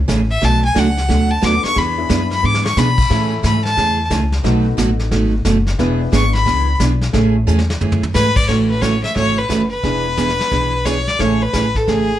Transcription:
0.08 A1 C#3 E3 A3 C#4 G#4, kick, snare, hi-hat pedal
0.31 E5
0.41 B1 B2 F#3 A3 D4 F#4 A5, brush sweep, kick, snare
0.65 G#5
0.74 C#2 B2 F#3 A3 D4 F#4, kick, snare, hi-hat pedal
0.79 F#5
0.97 snare
1.08 D2 B2 F#3 A3 D4 F#4, brush sweep, kick, snare
1.31 A5
1.41 D#2 B2 F#3 A3 B3 D4 F#4 A4 B4 D6, kick, snare, hi-hat pedal
1.64 C#6, muted upright bass stroke, snare
1.75 E2 E3 B3 D4 G#4 B5, brush sweep, kick, snare
1.98 B3 D4 E4 G#4 B4
2.09 F#2 E3 B3 D4 G#4, kick, snare, hi-hat pedal
2.31 B5, snare
2.43 G#2 E3 B3 D4 G#4 D6
2.54 snare
2.65 C#6, snare
2.77 B2 E3 B3 D4 G#4 B5, snare, hi-hat pedal
2.98 kick, crash
3.10 A2 C#3 E3 A3 C#4 E4 G#4 A4, brush sweep, snare
3.43 G#2 C#3 E3 A3 C#4 G#4 B5, kick, snare, hi-hat pedal
3.65 A5, snare
3.76 E2 C#3 E3 A3 C#4 G#4, brush sweep, kick, snare
4.10 C#2 C#3 E3 A3 C#4 G#4, kick, snare, hi-hat pedal
4.32 snare
4.43 B1 B2 F#3 A3 B3 D#4 F#4 A4 B4, brush sweep, kick, snare
4.77 A1 B2 F#3 A3 D#4 F#4, kick, snare, hi-hat pedal
4.99 snare
5.11 G#1 B2 F#3 A3 D#4 F#4, brush sweep, kick, snare
5.45 F#1 B2 F#3 A3 D#4 F#4, kick, snare, hi-hat pedal
5.67 snare
5.78 E1 E3 B3 D4 E4 G#4 B4, brush sweep, kick, snare
6.12 G#1 E3 B3 D4 G#4 C#6, kick, snare, hi-hat pedal
6.34 B5, snare
6.46 C#2 E3 B3 D4 G#4, brush sweep, kick, snare
6.80 B1 E3 B3 D4 G#4, kick, snare, hi-hat pedal
7.01 snare
7.13 A1 C#3 E3 A3 C#4 E4 G#4 A4, brush sweep, kick, snare
7.47 E2 C#3 E3 A3 C#4 G#4, hi-hat pedal
7.59 snare
7.70 snare
7.80 F#2 C#3 E3 A3 C#4 G#4, floor tom
7.92 floor tom
8.03 floor tom
8.14 G#2 C#3 E3 A3 C#4 G#4 B4, snare, hi-hat pedal
8.36 D5, kick, crash
8.48 A1 C#3 E3 A3 C#4 E4 F#4 C#5, brush sweep, kick, snare
8.70 B4
8.82 C#3 E3 A3 C#4 F#4 C#5, kick, snare, hi-hat pedal
9.04 E5, snare
9.15 G#1 C#3 E3 A3 C#4 F#4 C#5, brush sweep, kick, snare
9.38 B4
9.49 F#1 C#3 E3 A3 C#4 F#4, kick, snare, hi-hat pedal
9.70 B4
9.83 E1 E3 B3 D4 E4 G#4, brush sweep, kick, snare
10.17 E3 B3 D4 G#4, kick, snare, hi-hat pedal
10.29 snare
10.39 snare
10.51 B1 E3 B3 D4 G#4, brush sweep, kick, snare
10.85 E3 B3 D4 G#4 C#5, kick, snare, hi-hat pedal
11.07 D5, snare
11.19 A1 C#3 E3 A3 C#4 E4 G#4 C#5, brush sweep, kick, snare
11.42 B4
11.53 A1 C#3 E3 A3 C#4 G#4, kick, snare, hi-hat pedal
11.75 A4, kick, snare
11.87 G#1 C#3 E3 A3 C#4 G#4, brush sweep, kick, snare

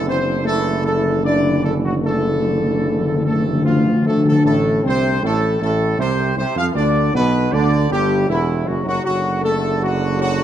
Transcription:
Already playing: F#1 D3 E3
0.06 D3 C4 C5
0.13 D3
0.28 D3
0.35 D3
0.43 D3 A3 A4
0.48 D3 E3
0.58 D3
0.65 D3
0.73 D3
0.82 D3 A3 A4
0.89 D3
0.97 D3
1.04 D3
1.12 D3
1.19 D3
1.24 D3 E3 D4 D5
1.35 D3
1.43 D3
1.50 D3
1.58 D3
1.64 D3 A3 A4
1.74 D3
1.81 D3 F#3 F#4
1.89 D3
1.97 D3
2.03 D3 E3 A3 A4
2.13 D3
2.20 D3
2.28 D3
2.36 D3
2.44 D3
2.52 D3
2.60 D3
2.67 D3
2.75 D3
2.83 D3
2.91 D3
2.99 D3
3.06 D3
3.14 D3
3.22 D3 A3 A4
3.30 D3
3.38 D3
3.46 D3
3.53 D3
3.61 D3 F3 F4
3.69 D3
3.77 D3
3.85 D3
3.93 D3
4.02 D3 A3 A4
4.10 D3
4.17 D3
4.25 D3 A3 A4
4.32 D3
4.44 A1 A2 A3 A4
4.84 C2 C3 C4 C5
5.22 A1 A2 A3 A4
5.61 A1 A2 A3 A4
5.98 C2 C3 C4 C5
6.37 C2 C3 C4 C5
6.55 F2 F3 F4 F5
6.75 D2 D3 D4 D5
7.14 B1 B2 B3 B4
7.52 D2 D3 D4 D5
7.90 G1 G2 G3 G4
8.28 E1 E2 E3 E4
8.65 F#1 F#2 F#3 F#4
8.84 F#1 F#2 F#3 F#4
9.03 F#1 D3 F#3 A3 F#4
9.42 A3 A4
9.79 F#3
9.83 F#4
10.17 F#3 F#4

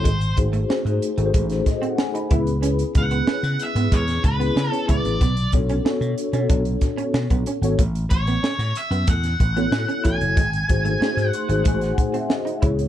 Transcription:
Already playing: C5
0.04 G#1 G#3, kick, closed hi-hat
0.21 closed hi-hat
0.37 G#1 A3 D#4 F#4 G#4 C5, muted clean electric guitar stroke, kick, closed hi-hat
0.53 A3, closed hi-hat
0.68 A3 C4 D#4 F#4 G#4 C5, muted slap bass stroke, snare
0.85 G#2, muted clean electric guitar stroke, closed hi-hat
1.02 closed hi-hat
1.17 G#1 A3 D#4 F#4 G#4 A4, closed hi-hat
1.25 C5
1.34 A1 G#3, kick, closed hi-hat
1.50 snare, closed hi-hat
1.66 D#5, muted clean electric guitar stroke, kick, snare, closed hi-hat
1.82 C4 F#5, closed hi-hat
1.98 G#5, muted clean electric guitar stroke, snare
2.14 D#4 B5, closed hi-hat
2.30 C#2 B3 C#4 E4 G#4 B4, kick, closed hi-hat
2.47 closed hi-hat
2.62 C#4, closed hi-hat
2.79 closed hi-hat
2.95 C#2 F#5, muted clean electric guitar stroke, kick, closed hi-hat
3.11 B3, closed hi-hat
3.27 C#4, muted slap bass stroke, snare
3.43 C#3, muted clean electric guitar stroke, snare, closed hi-hat
3.60 E5, closed hi-hat
3.75 G#2 B3, closed hi-hat
3.92 E2 G#3 C#5, kick, closed hi-hat
4.08 snare, closed hi-hat
4.24 C#2 B4, muted clean electric guitar stroke, kick, closed hi-hat
4.40 B3 C#4 E4 G#4 B4, closed hi-hat
4.56 C#3, muted clean electric guitar stroke, snare
4.71 C#4 A4, closed hi-hat
4.88 C#2 C#3 B3 E4 G#4 B4 D5, kick, closed hi-hat
5.04 A1, closed hi-hat
5.21 B1 B3, kick, closed hi-hat
5.37 closed hi-hat
5.52 B1 B3 D4 F#4 A4 C#5, muted clean electric guitar stroke, kick, closed hi-hat
5.69 C#4, closed hi-hat
5.85 B3 D4 F#4 A4 C#5, muted slap bass stroke, snare
6.01 B2, muted clean electric guitar stroke, closed hi-hat
6.18 closed hi-hat
6.33 B2 B3 C#4 D4 F#4 A4 C#5, closed hi-hat
6.50 B1 D4, kick, closed hi-hat
6.65 closed hi-hat
6.81 muted clean electric guitar stroke, kick, snare, closed hi-hat
6.98 C#4, closed hi-hat
7.14 B2, muted clean electric guitar stroke, snare
7.30 B1 B3, kick, closed hi-hat
7.46 C#4, closed hi-hat
7.61 G#1 B3 D4 F#4 A4 C#5, closed hi-hat
7.79 A1 A3, kick, closed hi-hat
7.95 closed hi-hat
8.10 A1 C#5, muted clean electric guitar stroke, kick, closed hi-hat
8.27 B3, closed hi-hat
8.43 C#4, muted slap bass stroke, snare
8.59 A2, muted clean electric guitar stroke, snare, closed hi-hat
8.75 E5, closed hi-hat
8.91 F#2 B3, closed hi-hat
9.07 E2 A3 F#5, kick, closed hi-hat
9.23 snare, closed hi-hat
9.40 A1, muted clean electric guitar stroke, kick, closed hi-hat
9.56 B3 E4 F#4 A4 C#5, closed hi-hat
9.71 A2, muted clean electric guitar stroke, snare
9.88 C#4, closed hi-hat
10.04 A1 B3 E4 F#4 A4 C#5 G#5, kick, closed hi-hat
10.21 F#1, closed hi-hat
10.36 G#1 G#3, kick, closed hi-hat
10.53 closed hi-hat
10.68 G#1 A3 D#4 F#4 G#4 C5, muted clean electric guitar stroke, kick, closed hi-hat
10.85 A3, closed hi-hat
11.01 A3 C4 D#4 F#4 G#4 C5, muted slap bass stroke, snare
11.17 G#2, muted clean electric guitar stroke, snare, closed hi-hat
11.29 F#5
11.33 C6, closed hi-hat
11.49 G#1 A3 D#4 F#4 G#4 C5, closed hi-hat
11.64 A1 G#3 G#5, kick, closed hi-hat
11.81 F#5, snare, closed hi-hat
11.98 F#5, muted clean electric guitar stroke, kick, closed hi-hat
12.14 C4 E5, closed hi-hat
12.30 D#5, muted clean electric guitar stroke, snare
12.45 D#4, closed hi-hat
12.62 C#2 B3 C#4 E4 G#4 C#5, kick, closed hi-hat
12.79 closed hi-hat

